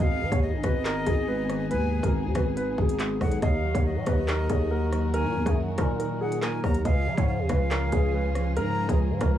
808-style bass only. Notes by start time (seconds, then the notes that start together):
0.00 G#1
0.21 G#2
0.32 D#2
0.53 A#1
0.64 G#1
1.07 G#1
1.71 D#2
2.03 G#1
2.25 D#2
2.35 G#1
2.78 G#1
3.21 B1
3.42 D#2
3.75 D#2
3.96 A#2
4.07 D#2
4.50 D#2
5.25 A#2
5.35 D#2
5.46 F#2
5.78 A#2
6.64 D#2
6.85 C#2
7.07 C#3
7.17 G#2
7.39 D#2
7.50 C#2
7.92 C#2
8.57 G#2
8.89 C#2
9.10 G#2
9.21 C#2